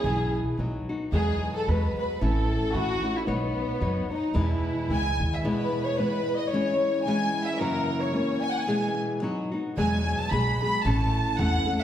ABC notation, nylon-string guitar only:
X:1
M:2/4
L:1/8
Q:"Swing" 1/4=111
K:E
V:1 name="Nylon-string guitar"
[B,,E,B,EG]2 [F,B,DF] [B,DF] | [E,,B,,F,G,B,F]2 [F,G,B,F]2 | [A,,E,A,CE]2 [E,A,CE] [A,CE] | [B,DFc]2 [B,DFc] [DFc] |
[E,,B,,E,G,B,E]2 [E,G,B,E]2 | [E,,B,,E,G,B,E]2 [E,G,B,E]2 | [E,G,CE]2 [E,G,CE]2 | [F,,C,E,^A,CF]2 [E,A,CF]2 |
[B,,E,G,B,G]2 [F,B,DF] [B,DF] | [E,,B,,F,G,B,G]2 [F,G,B,G] [F,G,B,G] | [A,,E,A,CA]2 [E,A,CA] [A,CA] |]